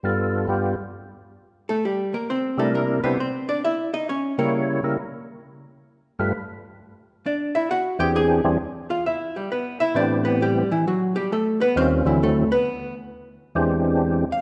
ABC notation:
X:1
M:4/4
L:1/8
Q:"Swing" 1/4=133
K:Ephr
V:1 name="Hollow-body jazz guitar"
z6 z [A,A] | [G,G] [_B,_B] [Cc] [A,A] [B,B] [=B,=B] [Cc] [Dd] | [Ee] [_E_e] [^C^c] [^A,^A]4- [A,A] | z8 |
[Dd] [Ee] [^F^f] [Gg] [^G^g]3 [=F=f] | [Ee] [G,G] [B,B] [Ee] [Dd] [B,B] [G,G] [E,E] | [^F,^F] [G,G] [A,A] [B,B] [Cc] [E,E] [A,A] [B,B]- | [B,B] z6 f |]
V:2 name="Tonewheel organ"
[G,,G,B,FA]2 [G,,G,B,FG] z4 z | z3 [C,G,DE_B]2 [C,G,DEc] z2 | z3 [^C,G,^A,E^c]2 [C,G,A,E^A] z2 | z3 [G,,G,A,FB] z4 |
z3 [E,,E,CDG_A]2 [E,,E,G,^B,D^G] z2 | z4 [A,,E,B,CG]3 z | z4 [_E,,_E,G,^CF] [D,,D,^F,=C=E]2 z | z4 [E,,E,^G,^B,D=G]3 z |]